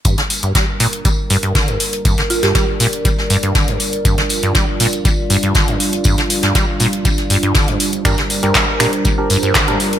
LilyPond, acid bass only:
\new Staff \with { instrumentName = "Acid bass" } { \clef bass \time 4/4 \key g \minor \tempo 4 = 120 g,16 d16 r16 g,16 g16 r16 bes,16 r16 g16 r16 g,16 g,16 d16 g,16 r8 | g,16 d16 r16 g,16 g16 r16 bes,16 r16 g16 r16 g,16 g,16 d16 g,16 r8 | g,16 d16 r16 g,16 g16 r16 bes,16 r16 g16 r16 g,16 g,16 d16 g,16 r8 | g,16 d16 r16 g,16 g16 r16 bes,16 r16 g16 r16 g,16 g,16 d16 g,16 r8 |
g,16 d16 r16 g,16 g16 r16 bes,16 r16 g16 r16 g,16 g,16 d16 g,16 r8 | }